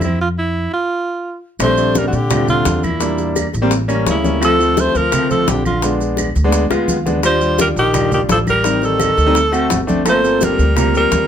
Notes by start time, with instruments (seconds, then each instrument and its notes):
Already playing: upright bass F2
0.01 tenor saxophone C4, alto saxophone E4, high conga, claves, maracas
0.21 alto saxophone F4
0.38 alto saxophone E4
0.73 alto saxophone F4
1.59 upright bass A#1, grand piano G3 A3 C4 D4, tenor saxophone A3, alto saxophone C5, high bongo, high conga, claves, maracas
1.77 grand piano G3 A3 C4 D4, high conga, maracas
1.95 tenor saxophone G3, alto saxophone A#4, high bongo, high conga, maracas
2.07 tenor saxophone D3, alto saxophone F#4
2.13 upright bass A#2, tenor saxophone D3, alto saxophone G4, high conga, maracas
2.30 grand piano G3 A3 C4 F4, high bongo, high conga, low conga, claves, maracas
2.48 tenor saxophone D3, alto saxophone F4, high conga, low conga, maracas
2.65 upright bass E2, high bongo, low bongo, high conga, maracas
2.83 tenor saxophone A#2, alto saxophone E4, high conga, claves, maracas
3.00 grand piano G3 A#3 D4, high bongo, high conga, maracas
3.18 high bongo, high conga, maracas
3.36 high bongo, high conga, claves, maracas
3.53 upright bass A1, high bongo, high conga, maracas
3.62 grand piano G3 A#3 C4
3.71 high bongo, high conga, maracas
3.88 grand piano G3 A#3 C#4, high bongo, high conga, claves, maracas
4.06 upright bass D2, tenor saxophone C#3, alto saxophone E4, high bongo, low bongo, high conga, maracas
4.24 grand piano G3 A#3 C#4, high conga, maracas
4.40 grand piano F3 A3 C4, tenor saxophone F3, high bongo, high conga, claves, maracas
4.44 alto saxophone A4
4.59 grand piano F3 A3 C4, high conga, maracas
4.77 tenor saxophone A3, alto saxophone C5, high bongo, high conga, maracas
4.95 upright bass D2, tenor saxophone F3, alto saxophone A#4, high conga, maracas
5.12 grand piano F3 A3 C4, high bongo, high conga, low conga, claves, maracas
5.30 tenor saxophone F3, alto saxophone A4, high conga, low conga, maracas
5.48 upright bass A#1, tenor saxophone D3, alto saxophone G4, high bongo, low bongo, high conga, maracas
5.65 tenor saxophone D3, alto saxophone F4, high conga, claves, maracas
5.82 grand piano G#3 B3 D4, high bongo, high conga, maracas
6.00 high bongo, high conga, maracas
6.17 high bongo, high conga, claves, maracas
6.35 upright bass D2, high bongo, high conga, maracas
6.44 grand piano G#3 B3 D4
6.52 high bongo, high conga, maracas
6.71 upright bass D2, grand piano G#3 B3 F4 F#5, high bongo, high conga, claves, maracas
6.88 upright bass D#2, grand piano F5, high conga, maracas
7.06 grand piano G#3 B3 D4 D5, low bongo, high conga, maracas
7.23 grand piano G3 D4 F4, tenor saxophone G3, alto saxophone C5, high bongo, high conga, claves, maracas
7.41 grand piano G3 D4 F4, high conga, maracas
7.59 tenor saxophone G3, alto saxophone A#4, high bongo, high conga, maracas
7.76 upright bass A#1, tenor saxophone D#3, alto saxophone G4, high conga, maracas
7.93 grand piano G3 D4 F4, high bongo, high conga, low conga, claves, maracas
8.12 tenor saxophone D#3, alto saxophone G4, high conga, low conga, maracas
8.29 upright bass A1, tenor saxophone F3, alto saxophone A4, high bongo, low bongo, high conga, maracas
8.47 tenor saxophone G3, alto saxophone A#4, high conga, claves, maracas
8.64 grand piano G3 C4 D#4, high bongo, high conga, maracas
8.82 tenor saxophone D#3, alto saxophone A4, high bongo, high conga, maracas
9.00 high bongo, high conga, claves, maracas
9.17 upright bass D2, high bongo, high conga, maracas
9.26 grand piano G3 C4 D#4
9.35 high bongo, high conga, maracas
9.52 grand piano A3 C4 F#4, high bongo, high conga, claves, maracas
9.70 upright bass G1, high bongo, low bongo, high conga, maracas
9.87 grand piano A3 C4 D4, high conga, maracas
10.05 tenor saxophone A3, grand piano A#3 C4 F4 A4, high bongo, high conga, claves, maracas
10.09 alto saxophone C5
10.24 grand piano A#3 C4 F4 A4, high conga, maracas
10.41 tenor saxophone G3, alto saxophone A#4, high bongo, high conga, maracas
10.59 upright bass D2, high conga, maracas
10.75 tenor saxophone G3, grand piano A#3 C4 F4 A#4, alto saxophone A#4, high bongo, high conga, low conga, claves, maracas
10.95 tenor saxophone G3, alto saxophone A#4, high conga, maracas
11.12 upright bass D#2, high bongo, low bongo, high conga, maracas